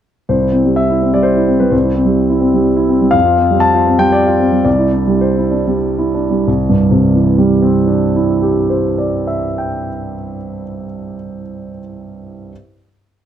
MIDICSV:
0, 0, Header, 1, 2, 480
1, 0, Start_track
1, 0, Key_signature, 0, "major"
1, 0, Tempo, 476569
1, 285, Time_signature, 3, 2, 24, 8
1, 3644, Tempo, 519481
1, 4604, Tempo, 569260
1, 5084, Tempo, 598205
1, 5564, Tempo, 639659
1, 11138, End_track
2, 0, Start_track
2, 0, Title_t, "Grand piano"
2, 0, Program_c, 0, 0
2, 291, Note_on_c, 0, 36, 40
2, 293, Note_on_c, 0, 72, 51
2, 420, Note_on_c, 0, 64, 31
2, 460, Control_c, 0, 64, 127
2, 524, Note_on_c, 0, 60, 32
2, 608, Note_off_c, 0, 64, 0
2, 658, Note_on_c, 0, 55, 32
2, 721, Note_off_c, 0, 60, 0
2, 768, Note_on_c, 0, 76, 63
2, 776, Note_off_c, 0, 72, 0
2, 908, Note_on_c, 0, 64, 36
2, 1031, Note_on_c, 0, 60, 37
2, 1045, Note_off_c, 0, 55, 0
2, 1096, Note_off_c, 0, 64, 0
2, 1135, Note_off_c, 0, 76, 0
2, 1141, Note_on_c, 0, 55, 35
2, 1146, Note_on_c, 0, 74, 63
2, 1217, Note_off_c, 0, 60, 0
2, 1238, Note_on_c, 0, 72, 63
2, 1262, Note_off_c, 0, 74, 0
2, 1376, Note_on_c, 0, 64, 37
2, 1486, Note_on_c, 0, 60, 35
2, 1522, Note_off_c, 0, 55, 0
2, 1567, Note_off_c, 0, 64, 0
2, 1606, Note_off_c, 0, 72, 0
2, 1608, Note_on_c, 0, 71, 52
2, 1615, Note_on_c, 0, 55, 34
2, 1682, Note_off_c, 0, 60, 0
2, 1697, Note_off_c, 0, 36, 0
2, 1715, Note_on_c, 0, 72, 54
2, 1726, Note_on_c, 0, 36, 48
2, 1731, Note_off_c, 0, 71, 0
2, 1754, Control_c, 0, 64, 0
2, 1806, Note_off_c, 0, 55, 0
2, 1850, Note_on_c, 0, 64, 36
2, 1887, Control_c, 0, 64, 127
2, 1962, Note_on_c, 0, 60, 38
2, 2042, Note_off_c, 0, 64, 0
2, 2070, Note_on_c, 0, 55, 36
2, 2157, Note_off_c, 0, 60, 0
2, 2314, Note_on_c, 0, 64, 42
2, 2424, Note_on_c, 0, 60, 39
2, 2458, Note_off_c, 0, 55, 0
2, 2508, Note_off_c, 0, 64, 0
2, 2559, Note_on_c, 0, 55, 42
2, 2622, Note_off_c, 0, 60, 0
2, 2785, Note_on_c, 0, 64, 46
2, 2907, Note_off_c, 0, 72, 0
2, 2913, Note_on_c, 0, 60, 40
2, 2940, Note_off_c, 0, 55, 0
2, 2983, Note_off_c, 0, 64, 0
2, 3039, Note_on_c, 0, 55, 39
2, 3108, Note_off_c, 0, 60, 0
2, 3113, Note_off_c, 0, 36, 0
2, 3131, Note_on_c, 0, 77, 76
2, 3152, Note_on_c, 0, 41, 54
2, 3158, Note_off_c, 0, 55, 0
2, 3179, Control_c, 0, 64, 0
2, 3274, Note_on_c, 0, 65, 46
2, 3373, Control_c, 0, 64, 127
2, 3403, Note_on_c, 0, 60, 43
2, 3470, Note_off_c, 0, 65, 0
2, 3531, Note_on_c, 0, 55, 42
2, 3596, Note_off_c, 0, 60, 0
2, 3628, Note_on_c, 0, 81, 89
2, 3630, Note_off_c, 0, 77, 0
2, 3759, Note_on_c, 0, 65, 50
2, 3875, Note_on_c, 0, 60, 42
2, 3900, Note_off_c, 0, 55, 0
2, 3943, Note_off_c, 0, 65, 0
2, 3982, Note_off_c, 0, 81, 0
2, 3986, Note_on_c, 0, 55, 47
2, 3988, Note_on_c, 0, 79, 89
2, 4062, Note_off_c, 0, 60, 0
2, 4107, Note_off_c, 0, 79, 0
2, 4111, Note_on_c, 0, 74, 76
2, 4242, Note_on_c, 0, 65, 46
2, 4362, Note_on_c, 0, 60, 43
2, 4375, Note_off_c, 0, 55, 0
2, 4433, Note_off_c, 0, 65, 0
2, 4477, Note_on_c, 0, 55, 37
2, 4558, Note_off_c, 0, 60, 0
2, 4564, Note_off_c, 0, 41, 0
2, 4580, Note_off_c, 0, 74, 0
2, 4594, Note_on_c, 0, 74, 63
2, 4598, Note_on_c, 0, 36, 49
2, 4604, Note_off_c, 0, 55, 0
2, 4620, Control_c, 0, 64, 0
2, 4713, Note_on_c, 0, 64, 39
2, 4771, Control_c, 0, 64, 127
2, 4830, Note_on_c, 0, 62, 36
2, 4908, Note_off_c, 0, 64, 0
2, 4955, Note_on_c, 0, 55, 39
2, 5029, Note_off_c, 0, 62, 0
2, 5072, Note_on_c, 0, 72, 52
2, 5079, Note_off_c, 0, 74, 0
2, 5207, Note_on_c, 0, 64, 40
2, 5314, Note_on_c, 0, 62, 40
2, 5341, Note_off_c, 0, 55, 0
2, 5395, Note_off_c, 0, 64, 0
2, 5441, Note_on_c, 0, 55, 40
2, 5511, Note_off_c, 0, 62, 0
2, 5686, Note_on_c, 0, 64, 39
2, 5796, Note_off_c, 0, 72, 0
2, 5802, Note_on_c, 0, 62, 39
2, 5825, Note_off_c, 0, 55, 0
2, 5876, Note_off_c, 0, 64, 0
2, 5924, Note_on_c, 0, 55, 37
2, 5997, Note_off_c, 0, 62, 0
2, 6013, Note_off_c, 0, 36, 0
2, 6046, Note_off_c, 0, 55, 0
2, 6051, Note_on_c, 0, 36, 47
2, 6062, Control_c, 0, 64, 0
2, 6218, Note_on_c, 0, 43, 48
2, 6223, Control_c, 0, 64, 127
2, 6375, Note_on_c, 0, 48, 51
2, 6557, Note_on_c, 0, 52, 51
2, 6732, Note_on_c, 0, 55, 50
2, 6914, Note_on_c, 0, 60, 49
2, 7099, Note_on_c, 0, 62, 45
2, 7316, Note_on_c, 0, 64, 43
2, 7514, Note_on_c, 0, 67, 43
2, 7720, Note_on_c, 0, 72, 42
2, 7935, Note_on_c, 0, 74, 40
2, 8152, Note_on_c, 0, 76, 44
2, 8289, Note_off_c, 0, 36, 0
2, 8384, Note_on_c, 0, 79, 43
2, 8456, Note_off_c, 0, 43, 0
2, 8613, Note_off_c, 0, 48, 0
2, 8795, Note_off_c, 0, 52, 0
2, 8970, Note_off_c, 0, 55, 0
2, 9152, Note_off_c, 0, 60, 0
2, 9337, Note_off_c, 0, 62, 0
2, 9554, Note_off_c, 0, 64, 0
2, 9752, Note_off_c, 0, 67, 0
2, 9957, Note_off_c, 0, 72, 0
2, 10039, Note_off_c, 0, 74, 0
2, 10039, Note_off_c, 0, 76, 0
2, 10041, Note_off_c, 0, 79, 0
2, 10588, Control_c, 0, 64, 0
2, 11138, End_track
0, 0, End_of_file